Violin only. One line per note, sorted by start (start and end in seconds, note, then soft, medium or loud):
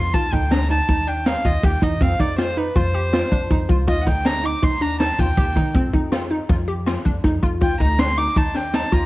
0.00 0.15 C6 medium
0.14 0.34 A5 medium
0.33 0.53 G5 medium
0.52 0.70 A#5 medium
0.70 1.09 A5 medium
1.07 1.28 G5 medium
1.27 1.47 F5 medium
1.46 1.66 D#5 medium
1.64 1.84 G5 medium
1.83 2.03 D#5 medium
2.02 2.22 F5 medium
2.20 2.39 D5 medium
2.39 2.59 C5 medium
2.57 2.78 B4 medium
2.76 3.69 C5 medium
3.88 4.03 D#5 medium
4.02 4.09 F#5 medium
4.08 4.28 G5 medium
4.26 4.47 A#5 loud
4.45 4.65 D6 medium
4.63 4.83 C6 medium
4.82 5.00 A#5 loud
5.01 5.21 A5 medium
5.20 5.75 G5 medium
7.62 7.79 G5 medium
7.81 8.01 A#5 loud
7.99 8.20 C6 loud
8.18 8.39 D6 loud
8.37 8.57 A5 medium
8.55 8.76 G5 medium
8.74 8.95 A5 medium
8.93 9.06 A#5 medium